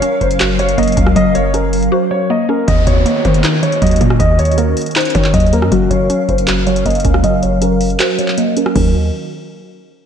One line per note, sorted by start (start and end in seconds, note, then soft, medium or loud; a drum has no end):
0.00 0.58 F#3 loud
0.00 2.65 F#3 medium
0.00 2.65 C#4 medium
0.00 0.96 C#4 medium
0.00 2.65 A#4 medium
0.00 0.19 C#5 medium
0.00 2.65 F5 medium
0.00 closed hi-hat medium
0.21 0.76 F#1 loud
0.21 0.37 C5 medium
0.21 kick loud
0.21 closed hi-hat soft
0.31 closed hi-hat medium
0.40 1.35 F#4 loud
0.40 clap loud
0.40 closed hi-hat medium
0.59 1.15 F#3 medium
0.59 0.74 C#5 medium
0.59 closed hi-hat medium
0.69 closed hi-hat medium
0.78 0.96 F#1 loud
0.78 1.73 A#3 medium
0.78 0.93 D#5 medium
0.78 kick medium
0.78 closed hi-hat medium
0.83 closed hi-hat medium
0.88 closed hi-hat medium
0.92 closed hi-hat medium
0.97 1.15 C#2 loud
0.97 1.53 C#4 medium
0.97 kick loud
0.97 closed hi-hat medium
1.07 cross-stick loud
1.16 1.89 F#1 loud
1.16 2.10 F#3 medium
1.16 1.31 D#5 loud
1.16 kick loud
1.16 closed hi-hat medium
1.35 1.50 C#5 medium
1.35 closed hi-hat medium
1.54 2.48 C#4 medium
1.54 1.90 A#4 medium
1.54 closed hi-hat medium
1.73 closed hi-hat medium
1.73 open hi-hat medium
1.83 closed hi-hat soft
1.92 2.68 F#4 loud
1.92 2.07 C5 medium
2.11 2.68 F#3 medium
2.11 2.26 C#5 medium
2.30 2.68 A#3 medium
2.30 2.45 D#5 medium
2.49 2.68 C#4 medium
2.49 2.64 A#4 medium
2.67 2.86 D#2 loud
2.67 3.61 D#3 medium
2.67 5.69 D#3 medium
2.67 8.72 C#4 medium
2.67 5.69 F#4 medium
2.67 2.83 D#5 medium
2.67 5.69 D#5 medium
2.67 kick loud
2.67 closed hi-hat medium
2.67 downlifter medium
2.87 3.05 D#2 loud
2.87 3.23 C#5 medium
2.87 kick loud
2.87 closed hi-hat medium
3.06 4.00 A#3 loud
3.06 closed hi-hat medium
3.25 3.61 D#3 loud
3.25 3.40 C5 medium
3.25 kick loud
3.25 closed hi-hat soft
3.34 closed hi-hat medium
3.44 4.39 D#4 loud
3.44 clap loud
3.44 closed hi-hat medium
3.62 4.18 D#3 medium
3.62 3.78 C#5 medium
3.62 closed hi-hat medium
3.72 closed hi-hat medium
3.81 4.00 D#2 loud
3.81 4.77 F#3 medium
3.81 3.97 D#5 medium
3.81 kick medium
3.81 closed hi-hat medium
3.87 closed hi-hat medium
3.91 closed hi-hat medium
3.96 closed hi-hat medium
4.01 4.19 A#2 loud
4.01 4.57 A#3 medium
4.01 kick loud
4.01 closed hi-hat medium
4.10 cross-stick loud
4.20 4.75 D#2 loud
4.20 5.14 D#3 loud
4.20 4.35 D#5 loud
4.20 kick loud
4.20 closed hi-hat medium
4.39 4.54 C#5 medium
4.39 closed hi-hat medium
4.45 closed hi-hat medium
4.52 closed hi-hat soft
4.57 5.52 A#3 medium
4.57 4.93 A#4 medium
4.57 closed hi-hat medium
4.77 closed hi-hat medium
4.77 open hi-hat medium
4.82 closed hi-hat medium
4.86 closed hi-hat medium
4.91 closed hi-hat soft
4.96 5.72 D#4 loud
4.96 5.11 C5 medium
4.96 clap loud
4.96 closed hi-hat medium
5.01 closed hi-hat medium
5.05 closed hi-hat medium
5.10 closed hi-hat medium
5.15 5.72 D#3 medium
5.15 5.33 D#3 loud
5.15 5.30 C#5 medium
5.15 kick medium
5.15 closed hi-hat medium
5.24 clap medium
5.33 5.64 D#2 loud
5.33 5.71 F#3 medium
5.33 5.49 D#5 medium
5.33 kick loud
5.33 closed hi-hat medium
5.40 closed hi-hat medium
5.47 closed hi-hat soft
5.53 5.72 A#3 medium
5.53 5.68 A#4 medium
5.53 closed hi-hat medium
5.62 5.71 F#2 loud
5.62 cross-stick loud
5.72 5.90 F#1 loud
5.72 8.72 F#3 medium
5.72 6.66 F#3 medium
5.72 5.87 F#4 medium
5.72 8.73 A#4 medium
5.72 8.73 F5 medium
5.72 kick loud
5.72 closed hi-hat medium
5.91 6.09 F#1 loud
5.91 6.26 C#5 medium
5.91 kick loud
5.91 closed hi-hat medium
6.10 7.03 C#4 medium
6.10 closed hi-hat medium
6.29 6.83 F#1 loud
6.29 6.44 C5 medium
6.29 kick loud
6.29 closed hi-hat soft
6.38 closed hi-hat medium
6.48 7.43 F#4 loud
6.48 clap loud
6.48 closed hi-hat medium
6.67 7.22 F#3 medium
6.67 6.82 C#5 medium
6.67 closed hi-hat medium
6.76 closed hi-hat medium
6.86 7.04 F#1 loud
6.86 7.81 A#3 medium
6.86 7.01 D#5 medium
6.86 kick medium
6.86 closed hi-hat medium
6.90 closed hi-hat medium
6.95 closed hi-hat medium
7.00 closed hi-hat medium
7.05 7.23 C#2 loud
7.05 7.60 C#4 medium
7.05 kick loud
7.05 closed hi-hat medium
7.14 cross-stick loud
7.24 7.97 F#1 loud
7.24 8.18 F#3 medium
7.24 7.39 D#5 loud
7.24 kick loud
7.24 closed hi-hat medium
7.43 7.58 C#5 medium
7.43 closed hi-hat medium
7.61 8.55 C#4 medium
7.61 7.98 A#4 medium
7.61 closed hi-hat medium
7.81 closed hi-hat medium
7.81 open hi-hat medium
7.90 closed hi-hat soft
7.99 8.76 F#4 loud
7.99 8.15 C5 medium
7.99 clap loud
7.99 closed hi-hat medium
8.19 8.74 F#3 medium
8.19 8.34 C#5 medium
8.19 closed hi-hat medium
8.28 clap medium
8.38 8.74 A#3 medium
8.38 8.53 D#5 medium
8.38 closed hi-hat medium
8.57 8.74 C#4 medium
8.57 8.72 A#4 medium
8.57 closed hi-hat medium
8.66 cross-stick loud
8.75 9.11 D#2 loud
8.75 8.93 D#3 medium
8.75 8.93 F#3 medium
8.75 8.93 A#3 medium
8.75 8.93 C#4 medium
8.75 8.93 D#4 medium
8.75 8.93 F#4 medium
8.75 8.93 A#4 medium
8.75 8.93 D#5 medium
8.75 kick loud
8.75 crash medium